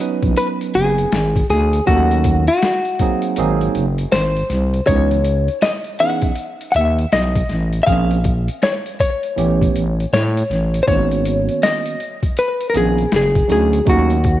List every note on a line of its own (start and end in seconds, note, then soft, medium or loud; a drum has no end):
0.00 1.06 F#3 medium
0.00 1.06 B3 soft
0.00 1.07 C#4 soft
0.00 1.07 D#4 soft
0.00 1.07 B4 medium
0.00 0.33 D#5 medium
0.00 closed hi-hat medium
0.23 0.34 A#1 medium
0.23 kick medium
0.23 closed hi-hat soft
0.36 0.48 B4 medium
0.36 closed hi-hat medium
0.61 closed hi-hat soft
0.74 1.06 F#1 medium
0.74 1.46 G#4 medium
0.74 closed hi-hat medium
0.98 closed hi-hat soft
1.12 1.43 G#1 medium
1.12 snare loud
1.12 closed hi-hat medium
1.36 kick medium
1.36 closed hi-hat medium
1.50 1.80 D2 medium
1.50 1.87 G#4 medium
1.50 snare soft
1.50 closed hi-hat medium
1.73 closed hi-hat soft
1.86 2.49 D#2 loud
1.86 2.42 F#3 medium
1.86 2.43 A3 medium
1.86 2.43 C#4 medium
1.86 2.44 D#4 medium
1.86 2.44 F#4 medium
1.86 2.44 A4 medium
1.86 kick medium
1.86 closed hi-hat medium
2.11 closed hi-hat soft
2.24 kick medium
2.24 closed hi-hat medium
2.48 3.60 F#4 medium
2.48 closed hi-hat soft
2.62 snare loud
2.62 closed hi-hat medium
2.85 closed hi-hat soft
2.99 3.36 F#3 medium
2.99 3.37 A#3 medium
2.99 3.37 C4 medium
2.99 3.38 D#4 medium
2.99 3.38 G#4 medium
2.99 kick medium
2.99 closed hi-hat medium
3.22 closed hi-hat soft
3.36 3.68 G#1 medium
3.36 3.84 F#3 medium
3.36 3.84 A#3 medium
3.36 3.84 C4 medium
3.36 3.85 D#4 medium
3.36 3.85 G#4 medium
3.36 closed hi-hat medium
3.60 4.12 E4 medium
3.60 closed hi-hat soft
3.75 4.06 F#1 medium
3.75 closed hi-hat medium
3.98 closed hi-hat medium
4.12 4.43 G#1 medium
4.12 4.83 C5 medium
4.12 snare loud
4.12 closed hi-hat medium
4.37 closed hi-hat medium
4.50 4.80 C2 medium
4.50 snare soft
4.50 closed hi-hat medium
4.74 closed hi-hat soft
4.87 5.49 C#2 loud
4.87 5.16 E3 medium
4.87 5.16 B3 soft
4.87 5.16 C#4 medium
4.87 5.17 D#4 medium
4.87 5.17 G#4 medium
4.87 5.58 C#5 loud
4.87 kick loud
4.87 closed hi-hat medium
5.11 closed hi-hat soft
5.24 closed hi-hat medium
5.48 closed hi-hat soft
5.62 5.73 D#5 medium
5.62 snare loud
5.62 closed hi-hat medium
5.84 closed hi-hat medium
5.99 6.28 E3 medium
5.99 6.29 B3 medium
5.99 6.29 C#4 medium
5.99 6.29 D#4 medium
5.99 6.30 G#4 medium
5.99 6.65 F#5 loud
5.99 closed hi-hat medium
6.22 kick medium
6.22 closed hi-hat soft
6.35 closed hi-hat medium
6.61 closed hi-hat soft
6.72 7.05 D#2 medium
6.72 6.75 F#5 medium
6.72 closed hi-hat medium
6.76 7.10 E5 loud
6.98 closed hi-hat soft
7.12 7.43 B1 medium
7.12 7.78 D#5 medium
7.12 snare loud
7.12 closed hi-hat medium
7.36 kick medium
7.36 closed hi-hat medium
7.49 7.80 A1 medium
7.49 snare soft
7.49 closed hi-hat medium
7.73 closed hi-hat soft
7.83 8.16 F3 medium
7.83 7.86 E5 medium
7.83 8.64 F5 loud
7.83 kick loud
7.83 closed hi-hat medium
7.88 8.49 A#1 loud
7.88 8.16 A#3 medium
7.88 8.17 C4 medium
7.88 8.17 C#4 medium
7.88 8.17 G#4 medium
8.11 closed hi-hat medium
8.24 kick medium
8.24 closed hi-hat medium
8.48 closed hi-hat soft
8.62 8.73 C#5 medium
8.62 snare loud
8.62 closed hi-hat medium
8.86 closed hi-hat medium
9.00 10.12 C#5 medium
9.00 kick medium
9.00 closed hi-hat medium
9.23 closed hi-hat soft
9.36 9.68 A1 medium
9.36 9.83 E3 medium
9.36 9.84 A3 medium
9.36 9.84 B3 medium
9.36 9.84 C#4 medium
9.36 9.85 G4 medium
9.36 closed hi-hat medium
9.62 kick medium
9.62 closed hi-hat soft
9.75 10.06 A1 medium
9.75 closed hi-hat medium
10.00 closed hi-hat medium
10.13 10.43 A2 medium
10.13 10.82 C#5 medium
10.13 snare loud
10.13 closed hi-hat medium
10.37 closed hi-hat medium
10.50 10.81 A1 loud
10.50 snare soft
10.50 closed hi-hat medium
10.74 closed hi-hat medium
10.83 11.93 D#3 medium
10.83 10.87 C5 medium
10.87 11.49 G#1 loud
10.87 11.94 A#3 soft
10.87 11.94 B3 medium
10.87 11.94 C#4 medium
10.87 10.96 F4 soft
10.87 11.65 C#5 medium
10.87 kick medium
10.87 closed hi-hat medium
10.96 11.98 F#4 medium
11.11 closed hi-hat soft
11.25 closed hi-hat medium
11.49 closed hi-hat soft
11.63 12.40 D#5 medium
11.63 snare loud
11.63 closed hi-hat medium
11.86 closed hi-hat soft
12.00 closed hi-hat medium
12.23 kick medium
12.23 closed hi-hat soft
12.37 12.69 B4 medium
12.37 closed hi-hat medium
12.61 closed hi-hat soft
12.70 12.75 A#4 medium
12.74 13.06 A#1 medium
12.74 13.03 D#3 medium
12.74 13.03 A#3 medium
12.74 13.03 B3 medium
12.74 13.04 C#4 soft
12.74 13.04 G#4 medium
12.74 13.11 G#4 medium
12.74 closed hi-hat medium
12.98 closed hi-hat soft
13.12 13.43 F#1 medium
13.12 snare loud
13.12 closed hi-hat medium
13.16 13.49 G#4 medium
13.35 kick medium
13.35 closed hi-hat medium
13.48 13.81 D2 medium
13.48 13.78 F#3 medium
13.48 13.78 A3 soft
13.48 13.78 C#4 soft
13.48 13.79 D#4 medium
13.48 13.79 F#4 medium
13.48 snare soft
13.48 closed hi-hat medium
13.52 13.89 G#4 medium
13.73 closed hi-hat soft
13.85 14.40 D#2 loud
13.85 14.15 F#3 medium
13.85 14.15 A3 medium
13.85 14.15 C#4 medium
13.85 14.16 D#4 medium
13.85 14.16 F#4 medium
13.85 kick loud
13.85 closed hi-hat medium
13.89 14.40 F#4 medium
14.10 closed hi-hat soft
14.24 kick medium
14.24 closed hi-hat medium